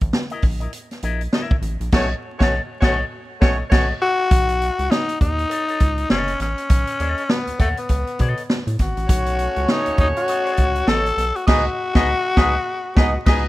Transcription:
0.01 analog synth bass A1, kick, closed hi-hat
0.13 snare
0.30 clean electric guitar E4 A#4 D#5, closed hi-hat
0.42 analog synth bass A#1, kick, open hi-hat
0.60 clean electric guitar E4 A#4 D#5, closed hi-hat
0.73 closed hi-hat
0.91 snare, closed hi-hat
1.02 analog synth bass A#1, clean electric guitar E4 A#4 D#5, closed hi-hat
1.21 closed hi-hat
1.33 clean electric guitar E4 A#4 E5, snare
1.51 kick
1.62 analog synth bass A1, closed hi-hat
1.80 analog synth bass A#1, closed hi-hat
1.92 analog synth bass B1, horn section A3 C#4 F#4 C#5, clean electric guitar A4 C#5 D#5, kick, snare, crash
2.39 analog synth bass B1, horn section A3 C#4 F#4 C#5, clean electric guitar A4 C#5 D#5, kick, snare
2.81 analog synth bass B1, horn section A3 C#4 F#4 C#5, clean electric guitar A4 C#5 D#5, kick, snare
3.40 analog synth bass B1, horn section A3 C#4 F#4 C#5, clean electric guitar A4 C#5 D#5, kick, snare
3.70 analog synth bass B1, horn section A3 C#4 F#4 C#5, clean electric guitar A4 C#5 D#5, kick, snare, crash
4.02 tenor saxophone F#4
4.31 analog synth bass B1, kick, closed hi-hat
4.49 closed hi-hat
4.61 closed hi-hat
4.79 analog synth bass C#2, closed hi-hat
4.91 tenor saxophone D#4, snare
5.09 closed hi-hat
5.21 analog synth bass D#2, tenor saxophone D#4, kick, closed hi-hat
5.39 closed hi-hat
5.50 clean electric guitar A4 C#5 D#5, closed hi-hat
5.68 clean electric guitar A4 C#5 D#5, closed hi-hat
5.80 analog synth bass C#2, kick, closed hi-hat
5.98 closed hi-hat
6.09 analog synth bass F#1, tenor saxophone C#4, clean electric guitar A4 C#5 D#5, snare
6.28 closed hi-hat
6.40 analog synth bass A1, tenor saxophone C#4, snare, closed hi-hat
6.58 closed hi-hat
6.70 analog synth bass B1, kick, closed hi-hat
6.87 closed hi-hat
7.00 analog synth bass D#2, clean electric guitar A4 C#5 D#5, closed hi-hat
7.18 closed hi-hat
7.29 tenor saxophone B3, snare
7.47 analog synth bass D#2, closed hi-hat
7.59 analog synth bass D#2, tenor saxophone A3, clean electric guitar A4 C#5 F#5, kick, closed hi-hat
7.77 tenor saxophone B3, closed hi-hat
7.89 analog synth bass C#2, kick, closed hi-hat
8.07 closed hi-hat
8.19 analog synth bass B2, clean electric guitar A4 C#5 D#5, kick, closed hi-hat
8.37 closed hi-hat
8.50 snare
8.67 analog synth bass A2, closed hi-hat
8.79 analog synth bass G#1, tenor saxophone F#4, kick, snare, closed hi-hat
8.97 analog synth bass A1, closed hi-hat
9.08 analog synth bass B1, horn section A3 C#4 F#4 C#5, kick, closed hi-hat
9.26 closed hi-hat
9.39 closed hi-hat
9.56 analog synth bass C#2, closed hi-hat
9.68 tenor saxophone D#4, snare
9.86 analog synth bass D#2, closed hi-hat
9.98 analog synth bass D#2, tenor saxophone D#4, kick, closed hi-hat
10.16 tenor saxophone F#4, closed hi-hat
10.28 clean electric guitar A4 C#5 D#5, closed hi-hat
10.44 clean electric guitar A4 C#5 D#5, closed hi-hat
10.57 analog synth bass C#2, kick, closed hi-hat
10.75 closed hi-hat
10.86 analog synth bass A1, clean electric guitar A4 C#5 D#5, tenor saxophone A4, snare
11.06 closed hi-hat
11.17 analog synth bass B1, snare, closed hi-hat
11.36 tenor saxophone F#4, closed hi-hat
11.47 analog synth bass C#2, horn section B3 D#4 G#4 D#5, clean electric guitar F#4 B4 D#5, tenor saxophone F#4, kick, snare, crash
11.94 analog synth bass C#2, horn section B3 D#4 G#4 D#5, clean electric guitar F#4 B4 D#5, kick, snare
12.36 analog synth bass C#2, horn section B3 D#4 G#4 D#5, clean electric guitar F#4 B4 F#5, kick, snare
12.95 analog synth bass C#2, horn section B3 D#4 G#4 D#5, clean electric guitar F#4 B4 D#5, kick, snare
13.26 analog synth bass C#2, horn section B3 D#4 G#4 D#5, clean electric guitar F#4 B4 D#5, kick, snare, crash

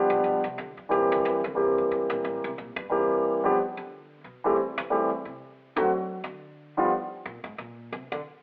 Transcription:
Already playing: grand piano F3 G3 B3 D4 G4
0.10 upright bass A#2
0.24 upright bass B2
0.44 upright bass C3
0.58 upright bass D3
0.77 upright bass G2
0.89 upright bass A#2, grand piano E3 G3 A#3 C4 G4
1.12 upright bass D3
1.25 upright bass E3
1.44 upright bass D3
1.55 upright bass C3, grand piano E3 G3 A#3 C4 G4
1.78 upright bass E2
1.91 upright bass G2
2.10 upright bass A#2
2.24 upright bass A2
2.44 upright bass C3
2.58 upright bass A#2
2.76 upright bass G2
2.89 grand piano E3 G3 A#3 C4 G4
3.44 grand piano F3 G3 B3 D4 G4
3.77 upright bass D3
4.24 upright bass B2
4.44 grand piano E3 G3 A3 C4 G4
4.78 upright bass E3
4.90 grand piano E3 G3 A3 C4 G4
5.25 upright bass C3
5.76 grand piano D3 F#3 A3 C4 F#4, upright bass F#3
6.24 upright bass D3
6.77 grand piano D3 F3 G3 B3 F4
7.26 upright bass A#2
7.44 upright bass G#2
7.58 upright bass A#2
7.92 upright bass C3
8.12 upright bass D3

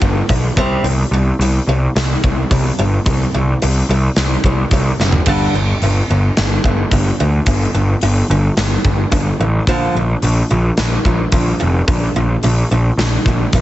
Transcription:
0.02 picked electric bass G1, steel-string acoustic guitar G2 D3, kick
0.29 picked electric bass B1, steel-string acoustic guitar G2 D3, kick, open hi-hat
0.56 picked electric bass C2, steel-string acoustic guitar C3 G3 C4, kick
0.83 picked electric bass C2, steel-string acoustic guitar C3 G3, open hi-hat
1.11 picked electric bass C2, steel-string acoustic guitar C3 G3
1.39 picked electric bass C2, steel-string acoustic guitar C3 G3, open hi-hat
1.67 picked electric bass C2, steel-string acoustic guitar C3 G3
1.95 picked electric bass C2, steel-string acoustic guitar C3 G3, snare, open hi-hat
2.24 picked electric bass C2, steel-string acoustic guitar C3 G3, kick
2.51 picked electric bass C2, steel-string acoustic guitar C3 G3, kick, open hi-hat
2.79 picked electric bass G1, steel-string acoustic guitar C3 G3
3.06 picked electric bass C2, steel-string acoustic guitar C3 G3, kick, open hi-hat
3.34 picked electric bass C2, steel-string acoustic guitar C3 G3
3.62 picked electric bass C2, steel-string acoustic guitar C3 G3, open hi-hat
3.89 picked electric bass C2, steel-string acoustic guitar C3 G3
4.16 picked electric bass C2, steel-string acoustic guitar C3 G3, snare, open hi-hat
4.44 picked electric bass C2, steel-string acoustic guitar C3 G3, kick
4.71 picked electric bass C2, steel-string acoustic guitar C3 G3, kick, open hi-hat
4.99 picked electric bass F#1, steel-string acoustic guitar C3 G3, snare
5.12 floor tom
5.26 picked electric bass G1, steel-string acoustic guitar G2 D3 G3, kick, open hi-hat, crash
5.53 picked electric bass G1, steel-string acoustic guitar G2 D3
5.82 picked electric bass G1, steel-string acoustic guitar G2 D3, open hi-hat
6.10 picked electric bass G1, steel-string acoustic guitar G2 D3
6.37 picked electric bass G1, steel-string acoustic guitar G2 D3, snare, open hi-hat
6.63 picked electric bass G1, steel-string acoustic guitar G2 D3, kick
6.91 picked electric bass G1, steel-string acoustic guitar G2 D3, kick, open hi-hat
7.20 picked electric bass D2, steel-string acoustic guitar G2 D3
7.46 picked electric bass G1, steel-string acoustic guitar G2 D3, kick, open hi-hat
7.74 picked electric bass G1, steel-string acoustic guitar G2 D3
8.01 picked electric bass G1, steel-string acoustic guitar G2 D3, open hi-hat
8.30 picked electric bass G1, steel-string acoustic guitar G2 D3
8.57 picked electric bass G1, steel-string acoustic guitar G2 D3, snare, open hi-hat
8.85 picked electric bass G1, steel-string acoustic guitar G2 D3, kick
9.11 picked electric bass G1, steel-string acoustic guitar G2 D3, kick, open hi-hat
9.40 picked electric bass A1, steel-string acoustic guitar G2 D3
9.67 picked electric bass A#1, steel-string acoustic guitar A#2 D3 F3, kick, open hi-hat
9.95 picked electric bass A#1, steel-string acoustic guitar A#2 D3
10.22 picked electric bass A#1, steel-string acoustic guitar A#2 D3, open hi-hat
10.50 picked electric bass A#1, steel-string acoustic guitar A#2 D3
10.77 picked electric bass A#1, steel-string acoustic guitar A#2 D3, snare, open hi-hat
11.05 picked electric bass A#1, steel-string acoustic guitar A#2 D3, kick
11.32 picked electric bass A#1, steel-string acoustic guitar A#2 D3, kick, open hi-hat
11.60 picked electric bass F1, steel-string acoustic guitar A#2 D3
11.87 picked electric bass A#1, steel-string acoustic guitar A#2 D3, kick, open hi-hat
12.16 picked electric bass A#1, steel-string acoustic guitar A#2 D3
12.43 picked electric bass A#1, steel-string acoustic guitar A#2 D3, open hi-hat
12.71 picked electric bass A#1, steel-string acoustic guitar A#2 D3
12.97 picked electric bass A#1, steel-string acoustic guitar A#2 D3, snare, open hi-hat
13.25 picked electric bass A#1, steel-string acoustic guitar A#2 D3, kick
13.53 picked electric bass A#1, steel-string acoustic guitar A#2 D3, kick, open hi-hat

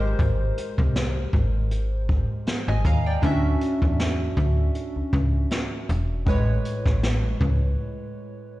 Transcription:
Already playing: fm bass G#1, synth keys G#3 G4 A#4 C5
0.19 fm bass G#1, kick, closed hi-hat
0.58 closed hi-hat
0.78 fm bass C2, kick
0.96 snare, closed hi-hat
1.33 fm bass G#1, kick
1.71 closed hi-hat
2.09 kick
2.47 snare, closed hi-hat
2.68 fm bass G#1, synth keys D#5 G#5
2.85 fm bass D#2, synth keys F5 A#5, kick, closed hi-hat
3.06 synth keys D5 G5
3.22 fm bass D2, synth keys C#4 D4 E4 E5, kick, closed hi-hat
3.31 synth keys F#4
3.61 closed hi-hat
3.82 fm bass E2, kick
3.99 snare, closed hi-hat
4.37 fm bass D2, kick
4.75 closed hi-hat
4.96 fm bass C#2
5.13 fm bass C#2, kick
5.50 snare, closed hi-hat
5.89 fm bass E1, closed hi-hat
6.26 fm bass A1, synth keys A2 G#3 B4 C#5, kick, closed hi-hat
6.65 closed hi-hat
6.86 fm bass A1, kick, cross-stick
7.03 snare, closed hi-hat
7.41 fm bass C#2, kick

